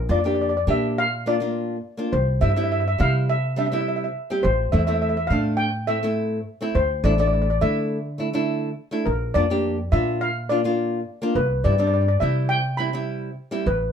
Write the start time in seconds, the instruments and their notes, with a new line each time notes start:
0.09 upright bass F2, nylon-string guitar A#3 D4 F4, steel pan D5
0.19 steel pan D5
0.24 nylon-string guitar A#3 D4 G4, steel pan D5
0.35 steel pan D5
0.41 steel pan D5
0.49 steel pan D5
0.57 steel pan D5
0.67 upright bass A#2, nylon-string guitar A#3 D4 G4, steel pan E5
0.98 steel pan F5
1.26 nylon-string guitar A#3 D4 F4, steel pan D5
1.40 nylon-string guitar A#3 D4 F4
1.97 nylon-string guitar A#3 D4 F4
2.13 upright bass C2, steel pan C5
2.41 upright bass G2, nylon-string guitar G3 C4 E4, steel pan E5
2.49 steel pan E5
2.56 nylon-string guitar G3 C4 E4, steel pan E5
2.64 steel pan E5
2.72 steel pan E5
2.80 steel pan E5
2.88 steel pan E5
2.98 upright bass C3, nylon-string guitar G3 C4 E4, steel pan F5
3.30 steel pan E5
3.56 nylon-string guitar G3 C4 D4, steel pan E5
3.66 steel pan E5
3.72 nylon-string guitar G3 C4 E4, steel pan E5
3.81 steel pan E5
3.88 steel pan E5
3.96 steel pan E5
4.04 steel pan E5
4.30 nylon-string guitar G3 C4 G4
4.43 upright bass A1, steel pan C5
4.72 upright bass E2, nylon-string guitar A3 C4 E4, steel pan E5
4.79 steel pan E5
4.87 nylon-string guitar A3 C4 E4, steel pan E5
4.94 steel pan E5
5.02 steel pan E5
5.09 steel pan E5
5.17 steel pan E5
5.27 upright bass A2, nylon-string guitar A3, steel pan F5
5.31 nylon-string guitar C4 D4
5.57 steel pan G5
5.87 nylon-string guitar A3 C4 E4, steel pan E5
6.03 nylon-string guitar A3 C4 E4
6.61 nylon-string guitar A3 C4 E4
6.75 upright bass D2, steel pan C5
7.04 upright bass A1, nylon-string guitar A3 D4 E4, steel pan D5
7.12 steel pan D5
7.18 nylon-string guitar A3 D4 E4, steel pan D5
7.27 steel pan D5
7.34 steel pan D5
7.42 steel pan D5
7.50 steel pan D5
7.61 upright bass D3, nylon-string guitar A3 D4 E4, steel pan E5
8.18 nylon-string guitar A3 D4 E4
8.33 nylon-string guitar A3 D4 E4
8.91 nylon-string guitar A3 D4 E4
9.06 upright bass A#1, steel pan A#4
9.34 upright bass F2, nylon-string guitar A#3 D4 F4, steel pan D5
9.50 nylon-string guitar A#3 D4 G4
9.92 upright bass A#2, nylon-string guitar A#3 D4 F4, steel pan E5
10.21 steel pan F5
10.49 nylon-string guitar A#3 D4 F4, steel pan D5
10.64 nylon-string guitar A#3 D4 F4
11.22 nylon-string guitar A#3 D4 F4
11.35 upright bass C2, steel pan B4
11.64 upright bass G2, nylon-string guitar G3 C4 E4, steel pan D5
11.72 steel pan D5
11.78 nylon-string guitar G3 C4 D4, steel pan D5
11.87 steel pan D5
11.94 steel pan D5
12.01 steel pan D5
12.08 steel pan D5
12.20 upright bass C3, nylon-string guitar G3 C4 E4, steel pan E5
12.49 steel pan G5
12.77 nylon-string guitar G3 C4 E4, steel pan B5
12.93 nylon-string guitar G3 C4 E4
13.51 nylon-string guitar G3 C4 E4
13.66 upright bass A1, steel pan B4